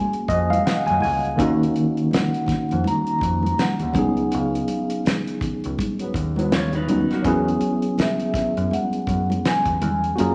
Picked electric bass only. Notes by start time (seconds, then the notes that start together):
0.29 F2
0.90 F#2
1.05 C#2
1.40 D#2
2.49 muted picked electric bass stroke
2.72 F2
3.23 F2
3.82 D#2
3.96 C#2
4.34 C#2
5.42 muted picked electric bass stroke
5.65 C#2
6.15 D#2
7.25 E2
8.35 muted picked electric bass stroke
8.57 F#2
9.09 F#2
9.67 E2
9.82 E2
10.20 F#2